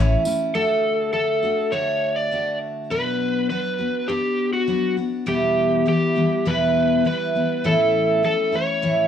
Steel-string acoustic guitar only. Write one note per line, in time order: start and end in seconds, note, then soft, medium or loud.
0.00 0.25 E3 medium
0.00 0.26 A3 medium
0.00 0.25 C#4 medium
0.00 0.24 E4 medium
0.25 0.54 A3 soft
0.25 0.55 C#4 medium
0.25 0.55 E4 medium
0.54 1.12 D3 medium
0.54 1.12 A3 medium
0.54 1.14 D4 medium
0.54 1.14 F#4 medium
1.13 1.43 D3 medium
1.13 1.43 A3 medium
1.13 1.43 D4 medium
1.13 1.41 F#4 medium
1.43 1.72 A3 soft
1.43 1.72 D4 soft
1.43 1.72 F#4 soft
1.72 2.31 D3 medium
1.72 2.31 A3 medium
1.72 2.32 D4 medium
1.72 2.33 F#4 medium
2.31 2.91 D3 medium
2.31 2.91 A3 medium
2.31 2.91 D4 medium
2.31 2.92 F#4 medium
2.90 3.50 B2 medium
2.90 3.48 F#3 medium
2.90 3.50 B3 medium
2.90 3.50 D4 medium
2.90 3.51 F#4 medium
3.50 3.79 F#3 soft
3.50 3.79 B3 medium
3.50 3.78 D4 medium
3.50 3.77 F#4 medium
3.79 4.08 B3 soft
3.79 4.08 D4 soft
3.79 4.09 F#4 soft
4.08 4.68 B2 medium
4.08 4.68 B3 medium
4.08 4.68 D4 medium
4.68 4.97 F#3 medium
4.68 4.97 B3 medium
4.68 4.96 D4 medium
4.68 4.96 F#4 medium
4.97 5.26 B3 soft
4.97 5.27 D4 soft
4.97 5.27 F#4 soft
5.26 5.86 E2 medium
5.26 5.86 B2 medium
5.26 5.85 E3 medium
5.26 5.85 G3 medium
5.26 5.86 B3 medium
5.26 5.87 E4 medium
5.86 6.16 E3 medium
5.86 6.16 G3 medium
5.86 6.15 B3 medium
5.86 6.14 E4 soft
6.15 6.45 E3 soft
6.15 6.45 G3 soft
6.15 6.46 B3 soft
6.15 6.45 E4 soft
6.45 7.05 E2 medium
6.45 7.05 B2 medium
6.45 7.04 E3 medium
6.45 7.04 G3 medium
6.45 7.05 B3 medium
6.45 7.06 E4 medium
7.05 7.34 E3 soft
7.05 7.35 G3 medium
7.05 7.34 B3 medium
7.05 7.34 E4 medium
7.35 7.63 E3 soft
7.35 7.64 G3 soft
7.35 7.64 B3 soft
7.35 7.64 E4 soft
7.64 8.23 A2 medium
7.64 8.22 E3 medium
7.64 8.23 A3 medium
7.64 8.23 C#4 medium
7.64 8.24 E4 medium
8.23 8.53 E3 soft
8.23 8.53 A3 medium
8.23 8.52 C#4 medium
8.23 8.51 E4 medium
8.52 8.82 A3 soft
8.52 8.82 C#4 soft
8.52 8.82 E4 medium
8.82 9.08 A2 medium
8.82 9.08 E3 medium
8.82 9.08 A3 medium
8.82 9.08 C#4 medium
8.82 9.08 E4 medium